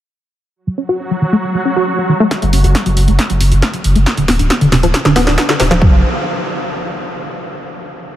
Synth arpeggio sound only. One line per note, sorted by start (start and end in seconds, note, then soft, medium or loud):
0.67 0.75 F#3 medium
0.78 0.83 C#4 medium
0.89 0.97 F#4 medium
1.11 1.16 F#3 medium
1.22 1.25 E3 medium
1.33 1.36 A3 loud
1.55 1.62 F#3 medium
1.65 1.71 C#4 medium
1.76 1.84 F#4 medium
1.98 2.03 F#3 medium
2.09 2.12 E3 medium
2.20 2.23 A3 loud
2.42 2.50 F#3 medium
2.53 2.58 C#4 medium
2.64 2.72 F#4 medium
2.86 2.91 F#3 medium
2.97 3.00 E3 medium
3.08 3.11 A3 loud
3.30 3.37 F#3 medium
3.41 3.46 C#4 medium
3.52 3.59 F#4 medium
3.74 3.79 F#3 medium
3.84 3.88 E3 medium
3.96 3.99 A3 loud
4.17 4.25 D3 medium
4.28 4.33 B3 medium
4.39 4.47 D4 medium
4.61 4.66 D3 medium
4.72 4.75 C3 medium
4.83 4.86 F3 loud
5.05 5.13 D3 medium
5.16 5.21 B3 medium
5.27 5.35 D4 medium
5.49 5.54 D3 medium
5.60 5.63 C3 medium
5.71 5.74 F3 loud
5.82 6.02 F#3 medium